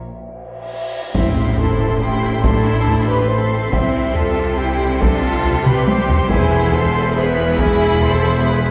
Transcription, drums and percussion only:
1.15 taiko loud
1.15 tam-tam medium
1.58 taiko low medium
2.23 taiko rim soft
2.44 taiko loud
2.66 taiko rim soft
2.87 taiko low medium
3.73 taiko loud
4.15 taiko low medium
5.02 taiko loud
5.45 taiko low medium
5.66 taiko mid medium
5.88 taiko high loud
6.08 taiko low loud
6.29 taiko loud
6.51 taiko rim medium
6.73 taiko low medium
7.59 taiko loud
8.02 taiko low medium
8.66 taiko rim medium

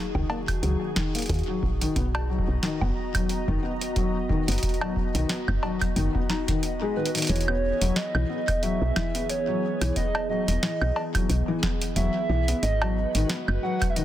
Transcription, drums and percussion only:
0.15 kick loud
0.15 high woodblock medium
0.30 cowbell medium
0.48 kick medium
0.48 closed hi-hat medium
0.48 high woodblock medium
0.63 closed hi-hat soft
0.96 kick loud
0.96 snare loud
1.15 closed hi-hat medium
1.19 closed hi-hat soft
1.22 closed hi-hat soft
1.26 closed hi-hat soft
1.29 kick loud
1.29 closed hi-hat soft
1.34 closed hi-hat soft
1.39 closed hi-hat soft
1.43 closed hi-hat soft
1.63 kick loud
1.81 closed hi-hat medium
1.96 kick loud
1.96 closed hi-hat soft
2.15 cowbell loud
2.15 high woodblock medium
2.39 kick loud
2.63 snare loud
2.63 closed hi-hat medium
2.81 kick loud
2.81 high woodblock medium
3.15 kick loud
3.15 closed hi-hat medium
3.15 high woodblock medium
3.29 closed hi-hat medium
3.48 kick loud
3.81 closed hi-hat medium
3.96 kick loud
3.96 closed hi-hat soft
4.29 kick loud
4.48 closed hi-hat medium
4.52 closed hi-hat medium
4.58 closed hi-hat soft
4.63 kick loud
4.63 closed hi-hat medium
4.69 closed hi-hat soft
4.74 closed hi-hat soft
4.81 cowbell loud
4.81 high woodblock medium
4.96 kick medium
5.15 closed hi-hat medium
5.29 snare loud
5.29 closed hi-hat medium
5.48 kick loud
5.48 high woodblock medium
5.63 cowbell medium
5.82 kick loud
5.82 closed hi-hat medium
5.82 high woodblock medium
5.96 closed hi-hat medium
6.15 kick loud
6.30 snare loud
6.48 kick loud
6.48 closed hi-hat medium
6.63 closed hi-hat medium
7.06 closed hi-hat medium
7.15 closed hi-hat medium
7.17 closed hi-hat soft
7.17 closed hi-hat medium
7.22 closed hi-hat medium
7.25 closed hi-hat soft
7.27 closed hi-hat medium
7.29 closed hi-hat medium
7.36 closed hi-hat soft
7.41 closed hi-hat soft
7.48 high woodblock medium
7.81 closed hi-hat medium
7.96 snare loud
7.96 closed hi-hat medium
8.15 high woodblock medium
8.48 kick loud
8.48 closed hi-hat medium
8.48 high woodblock medium
8.63 closed hi-hat medium
8.96 kick loud
8.96 snare loud
8.96 high woodblock medium
9.15 closed hi-hat medium
9.29 closed hi-hat medium
9.81 closed hi-hat medium
9.81 high woodblock soft
9.96 kick medium
9.96 closed hi-hat medium
10.15 cowbell medium
10.15 high woodblock medium
10.48 closed hi-hat medium
10.63 snare loud
10.63 closed hi-hat medium
10.81 high woodblock medium
10.96 cowbell medium
11.15 kick loud
11.15 closed hi-hat medium
11.15 high woodblock medium
11.30 closed hi-hat medium
11.63 kick loud
11.63 snare loud
11.81 closed hi-hat medium
11.96 closed hi-hat medium
12.48 closed hi-hat medium
12.63 closed hi-hat medium
12.82 cowbell medium
12.82 high woodblock medium
13.15 closed hi-hat medium
13.30 snare loud
13.30 closed hi-hat medium
13.48 high woodblock medium
13.82 kick loud
13.82 closed hi-hat medium
13.82 high woodblock medium
13.96 closed hi-hat medium

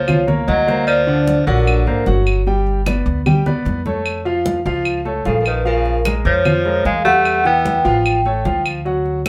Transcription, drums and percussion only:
0.08 high conga soft
0.08 low conga medium
0.08 claves medium
0.28 high conga soft
0.28 low conga medium
0.48 high conga medium
0.68 high conga medium
0.88 high conga soft
0.88 claves medium
1.08 high conga soft
1.27 high conga medium
1.47 high conga soft
1.67 high conga soft
1.67 claves medium
1.86 high conga soft
2.06 high conga medium
2.27 high conga soft
2.27 claves medium
2.47 high conga soft
2.67 high conga soft
2.86 high conga loud
2.86 claves medium
3.07 high conga soft
3.26 high conga soft
3.26 low conga medium
3.26 claves medium
3.46 high conga soft
3.46 low conga medium
3.66 high conga medium
3.86 high conga medium
4.06 high conga soft
4.06 claves medium
4.26 high conga soft
4.46 high conga medium
4.66 high conga soft
4.85 high conga soft
4.85 claves medium
5.06 high conga soft
5.25 high conga medium
5.45 high conga soft
5.45 claves medium
5.66 high conga soft
5.86 high conga soft
6.05 high conga loud
6.05 claves medium
6.25 high conga soft
6.45 high conga soft
6.45 low conga medium
6.45 claves medium
6.65 high conga soft
6.85 high conga medium
7.05 high conga medium
7.25 high conga soft
7.25 claves medium
7.45 high conga soft
7.65 high conga loud
7.85 high conga soft
8.05 high conga soft
8.05 claves medium
8.25 high conga soft
8.45 high conga medium
8.66 high conga soft
8.66 claves medium
8.86 high conga soft
9.06 high conga soft
9.26 high conga loud
9.26 claves medium

